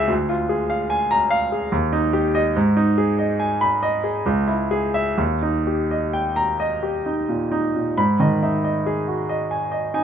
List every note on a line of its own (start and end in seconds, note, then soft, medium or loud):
0.00 0.12 C#2 medium
0.00 0.12 E4 medium
0.00 0.12 G#4 medium
0.00 0.12 E5 medium
0.07 1.67 D2 medium
0.29 0.62 F4 medium
0.49 0.82 G#4 medium
0.70 1.03 F5 medium
0.90 1.23 G#5 medium
1.11 1.44 A#5 medium
1.31 1.64 F5 medium
1.52 1.73 G#4 medium
1.72 2.52 D#2 medium
1.93 2.26 D#4 medium
2.13 2.46 G4 medium
2.35 2.55 D#5 medium
2.56 4.22 G#2 medium
2.77 3.10 D#4 medium
2.98 3.31 G#4 medium
3.19 3.52 D#5 medium
3.40 3.73 G#5 medium
3.61 3.95 B5 medium
3.83 4.17 D#5 medium
4.04 4.26 G#4 medium
4.26 5.16 C#2 medium
4.47 4.85 E4 medium
4.71 5.09 G#4 medium
4.94 5.18 E5 medium
5.18 7.92 D#2 medium
5.42 5.81 D#4 medium
5.67 6.04 G4 medium
5.91 6.28 D#5 medium
6.13 6.50 G5 medium
6.36 6.72 A#5 medium
6.60 6.95 D#5 medium
6.83 7.18 G4 medium
7.06 7.42 D#4 medium
7.29 7.65 A#2 medium
7.52 7.88 D#4 medium
7.76 7.97 A#2 soft
7.97 10.04 G#2 medium
7.97 8.33 B5 medium
8.20 8.55 D#3 medium
8.20 8.55 D#5 medium
8.43 8.77 D#4 medium
8.43 8.64 E5 soft
8.64 8.99 D#5 medium
8.86 9.21 G#4 medium
9.08 9.29 F#4 soft
9.29 9.64 D#5 medium
9.51 9.85 G#5 medium
9.72 10.04 D#5 medium
9.94 10.04 D#4 medium
9.94 10.04 G#5 medium